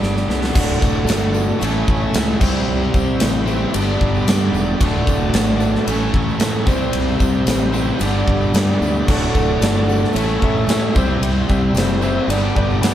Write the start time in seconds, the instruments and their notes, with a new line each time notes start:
Already playing: overdriven electric guitar G2 D3 G3 B3 D4
0.02 fingered electric bass G1, steel-string acoustic guitar G3 D4 G4 B4, snare
0.17 snare
0.28 fingered electric bass C2, overdriven electric guitar B3, steel-string acoustic guitar D4 G4 B4, snare
0.44 snare
0.53 fingered electric bass D1, overdriven electric guitar D2 A2, steel-string acoustic guitar D3 A3 D4 F#4 A4, tonewheel organ F#4 A4 D5 F#5, kick, crash, tambourine
0.68 tambourine
0.80 fingered electric bass D1, steel-string acoustic guitar D4 F#4 A4, kick, tambourine
1.07 fingered electric bass G1, steel-string acoustic guitar A3 D4 F#4 A4, snare, ride bell, tambourine
1.22 tambourine
1.34 steel-string acoustic guitar D4 F#4 A4, tambourine
1.59 fingered electric bass A1, steel-string acoustic guitar A2 E3 A3 C#4 E4 C#5, tonewheel organ E4 A4 C#5 E5, ride bell, tambourine
1.64 overdriven electric guitar A4
1.88 fingered electric bass A1, kick
2.01 tambourine
2.14 fingered electric bass C#2, steel-string acoustic guitar A3 C#4 E4 C#5, snare, ride bell, tambourine
2.28 tambourine
2.40 fingered electric bass C2, steel-string acoustic guitar C3 E3 G3 C4 E4 C5, tonewheel organ E4 G4 C5 E5, overdriven electric guitar G4, kick, tambourine, crash
2.68 fingered electric bass C2, tambourine
2.81 tambourine
2.94 fingered electric bass C2, steel-string acoustic guitar G3 C4 E4 C5, kick, tambourine
3.20 fingered electric bass A1, steel-string acoustic guitar G3 C4 E4 C5, snare, ride bell, tambourine
3.46 overdriven electric guitar C3 C4 G4, steel-string acoustic guitar E4 C5, tambourine
3.50 steel-string acoustic guitar G3 C4
3.73 fingered electric bass G1, overdriven electric guitar G2 D3 B3, steel-string acoustic guitar G3 D4 G4 B4, tonewheel organ D4 G4 B4 D5, ride bell, tambourine
4.01 fingered electric bass G1, kick
4.15 tambourine
4.27 fingered electric bass G2, steel-string acoustic guitar D4 G4, snare, ride bell, tambourine
4.41 tambourine
4.52 fingered electric bass E1, tambourine
4.78 fingered electric bass D1, overdriven electric guitar D2 A2, steel-string acoustic guitar D3 A3 D4 F#4, tonewheel organ D4 F#4 A4 D5, kick, ride bell
4.83 steel-string acoustic guitar A4
4.95 tambourine
5.07 fingered electric bass D1, kick, tambourine
5.33 fingered electric bass G#1, steel-string acoustic guitar A3 D4 F#4 A4, snare, ride bell, tambourine
5.48 tambourine
5.60 steel-string acoustic guitar D4 F#4 A4, tambourine
5.75 snare
5.87 fingered electric bass A1, steel-string acoustic guitar A2 E3 A3 C#4 E4 A4, tonewheel organ C#4 E4 A4 C#5, ride bell, tambourine
6.14 fingered electric bass A1, kick
6.28 tambourine
6.40 fingered electric bass A2, steel-string acoustic guitar A3 C#4 E4 A4, snare, ride bell, tambourine
6.67 fingered electric bass C2, steel-string acoustic guitar C3 E3 G3 C4 E4 C5, tonewheel organ C4 E4 G4 C5, overdriven electric guitar G4, kick, tambourine
6.93 fingered electric bass C2, ride bell
7.08 tambourine
7.20 fingered electric bass C2, kick, tambourine
7.34 tambourine
7.46 fingered electric bass A1, steel-string acoustic guitar G3 C4 E4 C5, snare, ride bell, tambourine
7.61 tambourine
7.73 steel-string acoustic guitar G3 C4 E4 C5, overdriven electric guitar G4, tambourine
7.77 overdriven electric guitar C3
7.99 fingered electric bass G1, overdriven electric guitar G2 D3 B3, steel-string acoustic guitar G3 D4 G4 B4, tonewheel organ D4 G4 B4 D5, ride bell, tambourine
8.16 tambourine
8.28 fingered electric bass G1, kick
8.41 tambourine
8.53 fingered electric bass G2, steel-string acoustic guitar G3 D4 B4, snare, ride bell, tambourine
8.81 fingered electric bass D2, tambourine
8.96 tambourine
9.05 fingered electric bass D1, overdriven electric guitar D2 A2, steel-string acoustic guitar D3 A3 F#4, tonewheel organ D4 F#4 A4 D5, upright piano A4, kick, crash
9.09 steel-string acoustic guitar D4 A4, upright piano D5 F#5
9.22 tambourine
9.34 fingered electric bass D1, upright piano A4 D5 F#5, kick, tambourine
9.60 fingered electric bass G1, steel-string acoustic guitar A3 D4 F#4 A4, upright piano A4 D5 F#5, snare, ride bell, tambourine
9.86 steel-string acoustic guitar D4 F#4 A4, upright piano A4 D5 F#5, tambourine
10.04 snare
10.12 fingered electric bass A1, steel-string acoustic guitar A2 E3 A3 C#4 E4 C#5, tonewheel organ C#4 E4 A4 C#5, upright piano A4 C#5 E5, ride bell, tambourine
10.18 overdriven electric guitar A4
10.29 tambourine
10.42 fingered electric bass A1, upright piano A4 C#5 E5, kick
10.56 tambourine
10.67 fingered electric bass A2, steel-string acoustic guitar A3 C#4, upright piano A4 C#5 E5, snare, ride bell, tambourine
10.82 tambourine
10.94 fingered electric bass C2, steel-string acoustic guitar C3 E3 G3 C4 E4 C5, tonewheel organ C4 E4 G4 C5, upright piano G4 C5 E5, overdriven electric guitar G4, kick, tambourine
11.21 fingered electric bass C2, ride bell
11.35 tambourine
11.49 fingered electric bass C2, upright piano G4 C5 E5, kick, tambourine
11.74 fingered electric bass F#1, steel-string acoustic guitar G3 C4 E4 C5, upright piano G4 C5 E5, ride bell, tambourine
11.78 snare
11.89 tambourine
12.02 overdriven electric guitar C3 G4, steel-string acoustic guitar G3 C4 E4 C5, upright piano G4 C5 E5, tambourine
12.28 fingered electric bass G1, overdriven electric guitar G2 D3 B3, steel-string acoustic guitar G3 D4 G4 B4, tonewheel organ D4 G4 B4 D5, upright piano G4 B4 D5, ride bell, tambourine
12.55 fingered electric bass G1, upright piano G4 B4 D5, kick
12.70 tambourine
12.81 fingered electric bass G2, steel-string acoustic guitar G3 D4 G4, upright piano G4 B4 D5 B5, snare, ride bell, tambourine
12.86 steel-string acoustic guitar B4